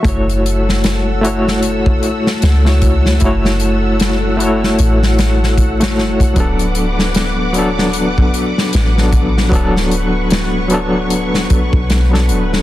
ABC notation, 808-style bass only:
X:1
M:4/4
L:1/16
Q:"Swing 16ths" 1/4=76
K:F#m
V:1 name="808-style bass" clef=bass
F,,,8- F,,,2 z2 C,,4 | F,,,8 A,,,6 F,,, z | D,,,8- D,,,2 z2 A,,,4 | D,,,8- D,,,2 z B,,,3 D,,,2 |]